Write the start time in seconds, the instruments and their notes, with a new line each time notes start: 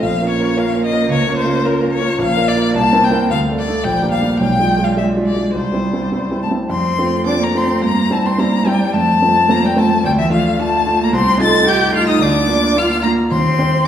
0.03 grand piano A#1, cello A#3, violin F5
0.20 grand piano C#4 F4 A#4
0.30 violin C#5
0.39 grand piano C#4 F4 A#4
0.56 grand piano C#4 F4 A#4, violin F5
0.74 grand piano C#4 F4 A#4
0.86 violin D#5
0.92 grand piano C#4 F4 A#4
1.09 grand piano C#2, violin C#5
1.27 grand piano C#4 F4 A#4
1.37 violin C5
1.45 grand piano C#4 F4 A#4
1.64 grand piano C#4 F4 A#4, violin A#4
1.81 grand piano C#4 F4 A#4
1.93 violin C#5
2.01 grand piano C#4 F4 A#4
2.18 grand piano A#1, cello A#3, violin F5
2.37 grand piano D4 F4 A#4
2.48 violin D5
2.55 grand piano D4 F4 A#4
2.75 grand piano C2, violin A5
2.93 grand piano C4 E4 A#4
3.04 violin G5
3.11 grand piano C4 E4 A#4
3.28 grand piano D2, cello A3, violin F5
3.48 grand piano A3 D4 A4
3.59 violin D5
3.67 grand piano A3 D4 A4
3.84 grand piano A#1, cello G3, violin G5
4.02 grand piano A#3 D4 G4
4.12 violin F5
4.21 grand piano A#3 D4 G4
4.40 grand piano B1, cello G#3, violin G5
4.60 grand piano G#3 D4 F4
4.79 grand piano G#3 D4 F4
4.84 violin F5
4.97 grand piano G#3 D4 F4, violin E5
5.17 grand piano G#3 D4 F4
5.26 violin D5
5.36 grand piano G#3 D4 F4
5.54 grand piano C2, cello G3, violin C5
5.73 grand piano G3 C4 E4
5.93 grand piano G3 C4 E4
6.12 grand piano G3 C4 E4
6.31 grand piano G3 C4 E4
6.42 cello A3, violin A5
6.51 grand piano G3 C4 E4
6.70 grand piano F2, cello C4, violin C6
6.98 grand piano A3 C4 F4
7.25 grand piano A3 C4 F4, cello D4, violin D6
7.39 cello A#3, violin A#5
7.55 grand piano A3 C4 F4, cello C4, violin C6
7.81 grand piano G2, cello A#3, violin A#5
8.10 grand piano G3 C4 E4, cello A3, violin A5
8.24 cello C4, violin C6
8.38 grand piano G3 C4 E4, cello A#3, violin A#5
8.65 grand piano G3 C4 E4, cello G3, violin G5
8.94 grand piano F2, cello A3, violin A5
9.21 grand piano A3 C4 F4
9.49 grand piano A3 C4 F4, cello A#3, violin A#5
9.63 cello G3, violin G5
9.75 cello A3, grand piano A3 C4 F4, violin A5
10.03 grand piano D2, cello G3, violin G5
10.18 cello E3, violin E5
10.30 cello F3, grand piano A3 D4 F4, violin F5
10.59 grand piano A3 D4 F4, cello A3, violin A5
10.86 grand piano A3 D4 F4
11.00 cello A#3, violin A#5
11.13 grand piano C2, cello C4, violin C6
11.39 grand piano A3 D#4 F4, cello A4, violin A6
11.65 grand piano A3 D#4 F4, cello G4, violin G6
11.92 grand piano A3 D#4 F4, cello F4, violin F6
12.08 cello D#4, violin D#6
12.19 grand piano D2, cello D4, violin D6
12.47 grand piano A#3 D4 F4
12.76 grand piano A#3 D4 F4, cello F4, violin F6
13.03 grand piano A#3 D4 F4, cello A#3, violin A#5
13.31 grand piano D#2, cello C4, violin C6
13.59 grand piano C4 G4 C5